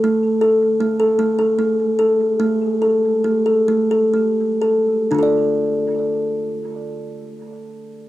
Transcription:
\new Staff \with { instrumentName = "Kalimba" } { \time 6/8 \key d \minor \tempo 4. = 45 a8 a'8 a16 a'16 a16 a'16 a8 a'8 | a8 a'8 a16 a'16 a16 a'16 a8 a'8 | <d d' f' a' d''>2. | }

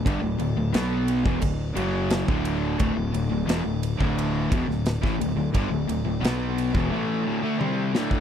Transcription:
<<
  \new Staff \with { instrumentName = "Tonewheel organ" } { \time 4/4 \key d \mixolydian \tempo 4 = 88 <a fis' a' d''>1 | <d' fis' a' d''>1 | <d' fis' a' d''>1 | }
  \new Staff \with { instrumentName = "Distorted electric guitar" } { \clef bass \time 4/4 \key d \mixolydian <g, d>16 <d, a,>16 <d, a,>16 <d, a,>16 <b, fis b>8. <e, b,>16 <d, a,>8 <fis, cis fis>8. <d, a, d>8. | <d, a,>16 <d, a,>16 <d, a,>16 <d, a,>16 <e, b,>16 <d, a,>8 <d, a, d>8. <e, b,>16 <d, a,>8 <a, e>16 <d, a,>16 <d, a,>16 | <g, d>16 <d, a,>16 <d, a,>16 <d, a,>16 <b, fis b>8. <e, b,>16 <a, e a>8 <d, a,>16 <d a>16 <c g c'>8 <d, a, d>8 | }
  \new Staff \with { instrumentName = "Overdriven electric guitar" } { \clef bass \time 4/4 \key d \mixolydian <g, d>16 <d, a,>16 <d, a,>16 <d, a,>16 <b, fis b>8. <e, b,>16 <d, a,>8 <fis, cis fis>8. <d, a, d>8. | <d, a,>16 <d, a,>16 <d, a,>16 <d, a,>16 <e, b,>16 <d, a,>8 <d, a, d>8. <e, b,>16 <d, a,>8 <a, e>16 <d, a,>16 <d, a,>16 | <g, d>16 <d, a,>16 <d, a,>16 <d, a,>16 <b, fis b>8. <e, b,>16 <a, e a>8 <d, a,>16 <d a>16 <c g c'>8 <d, a, d>8 | }
  \new Staff \with { instrumentName = "Overdriven electric guitar" } { \clef bass \time 4/4 \key d \mixolydian <g, d>16 <d, a,>16 <d, a,>16 <d, a,>16 <b, fis b>8. <e, b,>16 <d, a,>8 <fis, cis fis>8. <d, a, d>8. | <d, a,>16 <d, a,>16 <d, a,>16 <d, a,>16 <e, b,>16 <d, a,>8 <d, a, d>8. <e, b,>16 <d, a,>8 <a, e>16 <d, a,>16 <d, a,>16 | <g, d>16 <d, a,>16 <d, a,>16 <d, a,>16 <b, fis b>8. <e, b,>16 <a, e a>8 <d, a,>16 <d a>16 <c g c'>8 <d, a, d>8 | }
  \new Staff \with { instrumentName = "Fingered electric bass" } { \clef bass \time 4/4 \key d \mixolydian g,,16 d,,16 d,,16 d,,16 b,,8. e,,16 d,,8 fis,,8. d,,8. | d,,16 d,,16 d,,16 d,,16 e,,16 d,,8 d,,8. e,,16 d,,8 a,,16 d,,16 d,,16 | g,,16 d,,16 d,,16 d,,16 b,,8. e,,16 r2 | }
  \new DrumStaff \with { instrumentName = "Drums" } \drummode { \time 4/4 <bd cymr>8 cymr8 <cymr sn>8 cymr16 bd16 <bd cymr>8 cymr8 <cymr sn>16 bd16 cymr8 | <bd cymr>8 cymr8 <cymr sn>8 cymr16 bd16 cymr8 <bd cymr>16 sn16 <cymr sn>16 <bd sn>16 cymr8 | <bd cymr>8 cymr8 <cymr sn>8 cymr16 bd16 r4 tommh8 sn16 bd16 | }
>>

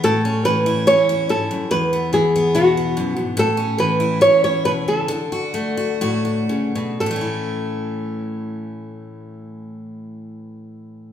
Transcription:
<<
  \new Staff \with { instrumentName = "Nylon-string guitar" } { \time 4/4 \key a \major \tempo 4 = 135 a'4 b'4 cis''4 a'4 | b'4 gis'4 fis'4. r8 | a'4 b'4 cis''8 cis''8 b'8 a'8~ | a'2. r4 |
a'1~ | a'1 | }
  \new Staff \with { instrumentName = "Steel-string acoustic guitar" } { \clef bass \time 4/4 \key a \major << { r8 cis'4 e'8 cis'8 e'4.~ | e'8 b4 b8 b8 b4. | r8 cis'4 e'8 cis'8 e'4. | r8 fis'4 fis'8 fis'8 fis'4. |
<e a cis' e'>1~ | <e a cis' e'>1 | } \\ { a,4 e4 e,4 gis,8 fis,8 | e,4 e4 b,4 fis,8 gis,8 | a,4 e4 e,4 b,8 cis8 | d4 a4 a,4 cis8 b,8 |
a,1~ | a,1 | } >> }
>>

